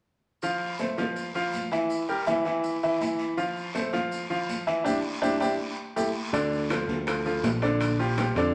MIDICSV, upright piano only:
0, 0, Header, 1, 2, 480
1, 0, Start_track
1, 0, Key_signature, -1, "minor"
1, 0, Tempo, 369458
1, 546, Time_signature, 4, 2, 24, 8
1, 11099, End_track
2, 0, Start_track
2, 0, Title_t, "Upright piano"
2, 0, Program_c, 0, 0
2, 557, Note_on_c, 0, 53, 74
2, 563, Note_on_c, 0, 65, 75
2, 567, Note_on_c, 0, 77, 79
2, 947, Note_off_c, 0, 53, 0
2, 950, Note_off_c, 0, 65, 0
2, 952, Note_off_c, 0, 77, 0
2, 1032, Note_on_c, 0, 57, 59
2, 1032, Note_on_c, 0, 69, 63
2, 1037, Note_on_c, 0, 72, 61
2, 1227, Note_off_c, 0, 57, 0
2, 1227, Note_off_c, 0, 69, 0
2, 1230, Note_off_c, 0, 72, 0
2, 1267, Note_on_c, 0, 53, 76
2, 1273, Note_on_c, 0, 65, 70
2, 1279, Note_on_c, 0, 77, 65
2, 1662, Note_off_c, 0, 53, 0
2, 1665, Note_off_c, 0, 65, 0
2, 1668, Note_off_c, 0, 77, 0
2, 1752, Note_on_c, 0, 53, 63
2, 1755, Note_on_c, 0, 65, 71
2, 1758, Note_on_c, 0, 77, 76
2, 2144, Note_off_c, 0, 53, 0
2, 2147, Note_off_c, 0, 65, 0
2, 2148, Note_off_c, 0, 77, 0
2, 2230, Note_on_c, 0, 52, 68
2, 2233, Note_on_c, 0, 64, 74
2, 2238, Note_on_c, 0, 76, 72
2, 2624, Note_off_c, 0, 52, 0
2, 2625, Note_off_c, 0, 64, 0
2, 2628, Note_off_c, 0, 76, 0
2, 2711, Note_on_c, 0, 55, 65
2, 2712, Note_on_c, 0, 67, 71
2, 2716, Note_on_c, 0, 70, 69
2, 2908, Note_off_c, 0, 55, 0
2, 2908, Note_off_c, 0, 67, 0
2, 2910, Note_off_c, 0, 70, 0
2, 2947, Note_on_c, 0, 64, 70
2, 2948, Note_on_c, 0, 52, 76
2, 2950, Note_on_c, 0, 76, 76
2, 3145, Note_off_c, 0, 64, 0
2, 3146, Note_off_c, 0, 52, 0
2, 3147, Note_off_c, 0, 76, 0
2, 3186, Note_on_c, 0, 52, 80
2, 3193, Note_on_c, 0, 64, 74
2, 3198, Note_on_c, 0, 76, 69
2, 3582, Note_off_c, 0, 52, 0
2, 3585, Note_off_c, 0, 64, 0
2, 3589, Note_off_c, 0, 76, 0
2, 3682, Note_on_c, 0, 52, 75
2, 3683, Note_on_c, 0, 64, 70
2, 3685, Note_on_c, 0, 76, 67
2, 3874, Note_off_c, 0, 52, 0
2, 3875, Note_off_c, 0, 64, 0
2, 3876, Note_off_c, 0, 76, 0
2, 3917, Note_on_c, 0, 64, 68
2, 3917, Note_on_c, 0, 76, 69
2, 3918, Note_on_c, 0, 52, 66
2, 4308, Note_off_c, 0, 64, 0
2, 4309, Note_off_c, 0, 52, 0
2, 4309, Note_off_c, 0, 76, 0
2, 4381, Note_on_c, 0, 65, 70
2, 4382, Note_on_c, 0, 53, 72
2, 4385, Note_on_c, 0, 77, 68
2, 4779, Note_off_c, 0, 65, 0
2, 4780, Note_off_c, 0, 53, 0
2, 4781, Note_off_c, 0, 77, 0
2, 4867, Note_on_c, 0, 57, 70
2, 4871, Note_on_c, 0, 69, 68
2, 4876, Note_on_c, 0, 72, 70
2, 5066, Note_off_c, 0, 57, 0
2, 5068, Note_off_c, 0, 69, 0
2, 5071, Note_off_c, 0, 72, 0
2, 5102, Note_on_c, 0, 53, 72
2, 5107, Note_on_c, 0, 65, 75
2, 5107, Note_on_c, 0, 77, 75
2, 5500, Note_off_c, 0, 53, 0
2, 5502, Note_off_c, 0, 65, 0
2, 5502, Note_off_c, 0, 77, 0
2, 5586, Note_on_c, 0, 65, 73
2, 5587, Note_on_c, 0, 53, 72
2, 5589, Note_on_c, 0, 77, 68
2, 5982, Note_off_c, 0, 65, 0
2, 5983, Note_off_c, 0, 53, 0
2, 5984, Note_off_c, 0, 77, 0
2, 6066, Note_on_c, 0, 52, 72
2, 6067, Note_on_c, 0, 64, 75
2, 6071, Note_on_c, 0, 76, 76
2, 6265, Note_off_c, 0, 52, 0
2, 6266, Note_off_c, 0, 64, 0
2, 6268, Note_off_c, 0, 76, 0
2, 6291, Note_on_c, 0, 64, 90
2, 6295, Note_on_c, 0, 62, 92
2, 6296, Note_on_c, 0, 67, 86
2, 6453, Note_off_c, 0, 64, 0
2, 6455, Note_off_c, 0, 62, 0
2, 6455, Note_off_c, 0, 67, 0
2, 6776, Note_on_c, 0, 64, 88
2, 6779, Note_on_c, 0, 62, 95
2, 6779, Note_on_c, 0, 67, 87
2, 6936, Note_off_c, 0, 64, 0
2, 6937, Note_off_c, 0, 62, 0
2, 6937, Note_off_c, 0, 67, 0
2, 7023, Note_on_c, 0, 67, 91
2, 7024, Note_on_c, 0, 62, 80
2, 7026, Note_on_c, 0, 64, 77
2, 7180, Note_off_c, 0, 62, 0
2, 7180, Note_off_c, 0, 67, 0
2, 7181, Note_off_c, 0, 64, 0
2, 7747, Note_on_c, 0, 67, 81
2, 7750, Note_on_c, 0, 69, 77
2, 7753, Note_on_c, 0, 64, 78
2, 7902, Note_off_c, 0, 67, 0
2, 7904, Note_off_c, 0, 69, 0
2, 7906, Note_off_c, 0, 64, 0
2, 8221, Note_on_c, 0, 50, 79
2, 8228, Note_on_c, 0, 62, 76
2, 8231, Note_on_c, 0, 74, 74
2, 8618, Note_off_c, 0, 50, 0
2, 8622, Note_off_c, 0, 62, 0
2, 8624, Note_off_c, 0, 74, 0
2, 8706, Note_on_c, 0, 53, 69
2, 8711, Note_on_c, 0, 65, 65
2, 8717, Note_on_c, 0, 69, 59
2, 9101, Note_off_c, 0, 53, 0
2, 9103, Note_off_c, 0, 65, 0
2, 9107, Note_off_c, 0, 69, 0
2, 9187, Note_on_c, 0, 53, 61
2, 9190, Note_on_c, 0, 65, 61
2, 9194, Note_on_c, 0, 69, 61
2, 9384, Note_off_c, 0, 53, 0
2, 9386, Note_off_c, 0, 65, 0
2, 9388, Note_off_c, 0, 69, 0
2, 9428, Note_on_c, 0, 53, 65
2, 9428, Note_on_c, 0, 65, 73
2, 9441, Note_on_c, 0, 69, 63
2, 9821, Note_off_c, 0, 53, 0
2, 9821, Note_off_c, 0, 65, 0
2, 9829, Note_off_c, 0, 69, 0
2, 9904, Note_on_c, 0, 62, 78
2, 9906, Note_on_c, 0, 50, 74
2, 9916, Note_on_c, 0, 74, 77
2, 10298, Note_off_c, 0, 62, 0
2, 10299, Note_off_c, 0, 50, 0
2, 10305, Note_off_c, 0, 74, 0
2, 10383, Note_on_c, 0, 53, 74
2, 10383, Note_on_c, 0, 65, 73
2, 10391, Note_on_c, 0, 67, 78
2, 10581, Note_off_c, 0, 53, 0
2, 10581, Note_off_c, 0, 65, 0
2, 10585, Note_off_c, 0, 67, 0
2, 10633, Note_on_c, 0, 65, 70
2, 10634, Note_on_c, 0, 53, 69
2, 10638, Note_on_c, 0, 67, 66
2, 10826, Note_off_c, 0, 65, 0
2, 10827, Note_off_c, 0, 53, 0
2, 10830, Note_off_c, 0, 67, 0
2, 10875, Note_on_c, 0, 50, 84
2, 10880, Note_on_c, 0, 62, 70
2, 10883, Note_on_c, 0, 74, 84
2, 11099, Note_off_c, 0, 50, 0
2, 11099, Note_off_c, 0, 62, 0
2, 11099, Note_off_c, 0, 74, 0
2, 11099, End_track
0, 0, End_of_file